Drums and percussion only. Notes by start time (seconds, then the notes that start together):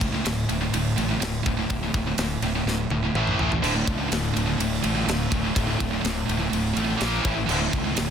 0.01 kick, ride
0.26 snare, ride
0.49 ride
0.74 ride
0.98 ride
1.22 snare, ride
1.46 kick, ride
1.70 kick, ride
1.94 kick, ride
2.18 snare, ride
2.42 ride
2.68 snare
2.90 high tom
3.15 mid tom
3.27 mid tom
3.39 floor tom
3.52 floor tom
3.64 crash
3.87 kick, ride
4.12 snare, ride
4.37 ride
4.60 ride
4.84 ride
5.09 snare, ride
5.32 kick, ride
5.56 kick, ride
5.80 kick, ride
6.05 snare, ride
6.29 ride
6.53 ride
6.77 ride
7.01 snare, ride
7.25 kick, ride
7.49 crash
7.73 kick, ride
7.97 snare, ride